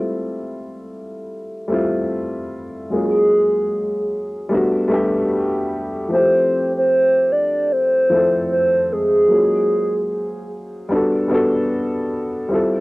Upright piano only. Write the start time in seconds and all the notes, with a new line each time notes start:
Already playing: G3 A3 C4 E4 F4
1.68 G3 A3 C4
1.72 E4 F4
2.90 F#3 G#3 A#3
2.94 C#4 F4
4.49 G3 A3 B3
4.54 D4 F#4
4.88 G3 A3 B3
4.92 D4 G4
6.09 F3 A3 C4
6.13 E4 G4
8.10 F3 A3 C4
8.14 E4 A4
9.28 F#3 A#3 C#4
9.33 F4 G#4
10.89 G3 B3 D4
10.93 F#4 A4
11.28 G3 B3 D4
11.32 F#4 A4
12.48 G3 C4 E4
12.53 F4 A4